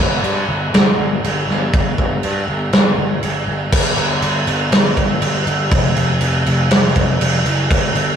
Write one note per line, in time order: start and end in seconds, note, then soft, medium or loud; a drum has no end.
0.00 0.18 G1 medium
0.23 0.43 G2 medium
0.23 crash soft
0.48 0.68 G1 medium
0.74 0.93 G1 medium
0.74 snare loud
0.74 crash soft
0.98 1.18 G1 medium
1.24 1.43 G1 medium
1.24 crash medium
1.49 1.68 G1 medium
1.49 snare soft
1.73 1.93 G1 medium
1.73 kick loud
1.73 crash medium
1.98 2.18 G1 medium
1.98 kick medium
2.23 2.43 G2 medium
2.23 crash soft
2.48 2.67 G1 medium
2.73 2.92 G1 medium
2.73 snare loud
2.73 crash medium
2.98 3.17 G1 medium
3.23 3.42 G1 medium
3.23 crash medium
3.48 3.67 G1 medium
3.72 3.96 G1 medium
3.72 kick loud
3.72 crash loud
3.72 crash medium
3.97 4.20 G1 medium
3.97 crash soft
4.22 4.45 G1 medium
4.22 crash medium
4.47 4.70 G1 medium
4.47 crash medium
4.72 4.95 G1 medium
4.72 snare loud
4.72 crash medium
4.97 5.20 G1 medium
4.97 kick medium
4.97 crash medium
5.22 5.45 G1 medium
5.22 crash medium
5.47 5.70 G1 medium
5.47 crash medium
5.71 5.95 F1 medium
5.71 kick loud
5.71 crash medium
5.96 6.19 F1 medium
5.96 crash medium
6.21 6.44 F1 medium
6.21 crash medium
6.46 6.69 F1 medium
6.46 crash medium
6.71 6.94 F1 medium
6.71 snare loud
6.71 crash medium
6.96 7.19 F1 medium
6.96 kick medium
6.96 crash medium
7.20 7.43 F1 medium
7.20 crash medium
7.46 7.69 F#1 medium
7.46 crash medium
7.71 7.93 G1 medium
7.71 kick loud
7.71 crash medium
7.95 8.16 G1 medium
7.95 crash medium